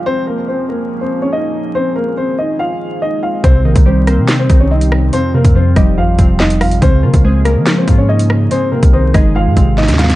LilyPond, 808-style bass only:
\new Staff \with { instrumentName = "808-style bass" } { \clef bass \time 4/4 \key des \lydian \tempo 4 = 142 r1 | r1 | c,8 bes,,16 c,4 c8. c,4. | r8. f,8. f,,8 aes,,8 f,,4 aes,,8 |
des,8 des16 des,4 f8. aes,4. | r8. c,8. g,,8. aes,16 aes,,8. ees,8. | }